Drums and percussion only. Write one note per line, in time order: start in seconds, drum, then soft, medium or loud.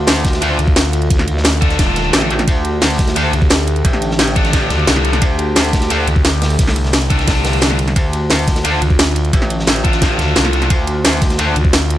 0.07 snare loud
0.07 closed hi-hat medium
0.07 open hi-hat medium
0.16 closed hi-hat soft
0.25 kick loud
0.25 snare medium
0.25 closed hi-hat medium
0.25 ride medium
0.33 snare medium
0.33 closed hi-hat soft
0.42 closed hi-hat medium
0.42 ride loud
0.59 closed hi-hat medium
0.59 ride medium
0.68 kick loud
0.76 snare loud
0.76 closed hi-hat medium
0.76 ride medium
0.85 ride soft
0.93 closed hi-hat medium
0.93 ride medium
1.02 closed hi-hat soft
1.10 kick loud
1.10 closed hi-hat medium
1.10 ride medium
1.19 snare soft
1.28 closed hi-hat medium
1.28 ride medium
1.37 snare medium
1.44 snare loud
1.44 closed hi-hat medium
1.44 ride medium
1.53 closed hi-hat soft
1.53 ride soft
1.62 kick loud
1.62 closed hi-hat medium
1.62 ride medium
1.70 snare soft
1.70 closed hi-hat soft
1.79 kick loud
1.79 snare soft
1.79 closed hi-hat medium
1.79 ride medium
1.96 snare soft
1.96 closed hi-hat medium
1.96 ride medium
2.04 ride soft
2.13 snare loud
2.13 closed hi-hat medium
2.13 ride medium
2.22 snare soft
2.22 ride soft
2.30 closed hi-hat medium
2.30 ride medium
2.39 snare soft
2.39 closed hi-hat soft
2.48 kick loud
2.48 closed hi-hat medium
2.48 ride loud
2.65 closed hi-hat medium
2.65 ride medium
2.81 snare loud
2.81 closed hi-hat medium
2.81 open hi-hat medium
2.90 closed hi-hat soft
2.98 kick loud
2.98 snare medium
2.98 closed hi-hat medium
2.98 ride medium
3.07 snare medium
3.07 closed hi-hat soft
3.16 closed hi-hat medium
3.16 ride medium
3.33 closed hi-hat medium
3.33 ride medium
3.42 kick loud
3.50 snare loud
3.50 closed hi-hat medium
3.50 ride medium
3.59 ride soft
3.67 closed hi-hat medium
3.67 ride medium
3.76 closed hi-hat soft
3.85 kick loud
3.85 closed hi-hat medium
3.85 ride medium
3.93 snare soft
4.02 closed hi-hat medium
4.02 ride medium
4.11 snare medium
4.19 snare loud
4.19 closed hi-hat medium
4.19 ride medium
4.27 closed hi-hat soft
4.27 ride soft
4.36 kick loud
4.36 closed hi-hat medium
4.36 ride medium
4.45 snare soft
4.45 closed hi-hat soft
4.53 kick loud
4.53 snare soft
4.53 closed hi-hat loud
4.53 ride medium
4.70 snare soft
4.70 closed hi-hat medium
4.70 ride medium
4.79 ride soft
4.87 snare loud
4.87 closed hi-hat medium
4.87 ride medium
4.96 snare soft
4.96 ride soft
5.05 closed hi-hat medium
5.05 ride medium
5.13 snare soft
5.13 closed hi-hat soft
5.21 kick loud
5.21 closed hi-hat medium
5.21 ride medium
5.38 closed hi-hat medium
5.38 ride medium
5.55 snare loud
5.55 closed hi-hat medium
5.55 open hi-hat medium
5.65 closed hi-hat soft
5.73 kick loud
5.73 snare medium
5.73 closed hi-hat medium
5.73 ride medium
5.81 snare medium
5.81 closed hi-hat soft
5.90 closed hi-hat loud
5.90 ride loud
6.07 closed hi-hat medium
6.07 ride medium
6.16 kick loud
6.25 snare loud
6.25 closed hi-hat loud
6.25 ride medium
6.33 ride soft
6.42 snare loud
6.42 closed hi-hat medium
6.42 open hi-hat medium
6.50 closed hi-hat soft
6.59 kick loud
6.59 snare medium
6.59 closed hi-hat loud
6.59 ride medium
6.67 snare loud
6.67 snare medium
6.67 open hi-hat medium
6.76 closed hi-hat medium
6.84 snare soft
6.84 ride medium
6.93 snare loud
6.93 closed hi-hat medium
6.93 ride medium
7.02 closed hi-hat soft
7.02 ride soft
7.10 kick loud
7.10 closed hi-hat medium
7.10 ride medium
7.19 snare soft
7.19 closed hi-hat soft
7.28 kick loud
7.28 snare soft
7.28 snare loud
7.28 closed hi-hat loud
7.28 open hi-hat medium
7.45 snare loud
7.45 closed hi-hat medium
7.45 open hi-hat medium
7.53 closed hi-hat soft
7.53 ride soft
7.61 snare loud
7.61 closed hi-hat loud
7.61 ride medium
7.70 snare medium
7.79 closed hi-hat medium
7.79 ride medium
7.88 snare soft
7.88 closed hi-hat soft
7.96 kick loud
7.96 closed hi-hat loud
7.96 ride medium
8.13 closed hi-hat medium
8.13 ride medium
8.30 snare loud
8.30 closed hi-hat loud
8.30 open hi-hat medium
8.39 closed hi-hat soft
8.48 kick loud
8.48 snare medium
8.48 closed hi-hat medium
8.48 ride medium
8.56 snare medium
8.56 closed hi-hat soft
8.65 closed hi-hat loud
8.65 ride medium
8.82 closed hi-hat medium
8.82 ride medium
8.90 kick loud
8.99 snare loud
8.99 closed hi-hat loud
8.99 ride medium
9.07 ride soft
9.16 closed hi-hat medium
9.16 ride medium
9.25 closed hi-hat soft
9.33 kick loud
9.33 closed hi-hat medium
9.33 ride medium
9.42 snare medium
9.50 closed hi-hat medium
9.50 ride medium
9.59 snare medium
9.67 snare loud
9.67 closed hi-hat medium
9.67 ride loud
9.76 closed hi-hat soft
9.76 ride soft
9.85 kick loud
9.85 closed hi-hat medium
9.85 ride medium
9.93 snare soft
9.93 closed hi-hat soft
10.02 kick loud
10.02 snare soft
10.02 closed hi-hat loud
10.02 ride medium
10.19 snare soft
10.19 closed hi-hat medium
10.19 ride medium
10.28 ride soft
10.36 snare loud
10.36 closed hi-hat loud
10.36 ride medium
10.45 snare medium
10.45 ride soft
10.53 closed hi-hat medium
10.53 ride medium
10.62 snare soft
10.62 closed hi-hat soft
10.70 kick loud
10.70 closed hi-hat medium
10.70 ride medium
10.87 closed hi-hat medium
10.87 ride medium
11.04 snare loud
11.04 closed hi-hat medium
11.04 open hi-hat medium
11.13 closed hi-hat soft
11.22 kick loud
11.22 snare medium
11.22 closed hi-hat medium
11.22 ride medium
11.30 snare medium
11.30 closed hi-hat soft
11.39 closed hi-hat medium
11.39 ride medium
11.56 closed hi-hat medium
11.56 ride medium
11.65 kick loud
11.73 snare loud
11.73 closed hi-hat medium
11.73 ride medium
11.81 ride soft
11.90 closed hi-hat medium
11.90 ride medium